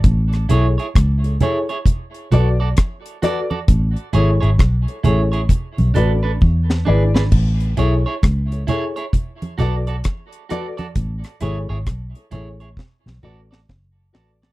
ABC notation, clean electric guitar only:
X:1
M:4/4
L:1/16
Q:"Swing 16ths" 1/4=66
K:A
V:1 name="Clean electric guitar"
z2 [EGc] [EGc] z2 [EGc] [EGc] z2 [FAd] [FAd] z2 [FAd] [FAd] | z2 [EGc] [EGc] z2 [EGc] [EGc] z2 [DAB] [DAB] z2 [DGB] [DGB] | z2 [EGc] [EGc] z2 [EGc] [EGc] z2 [FAd] [FAd] z2 [FAd] [FAd] | z2 [EGc] [EGc] z2 [EGc] [EGc] z2 [FAd] [FAd] z2 [FAd] [FAd] |]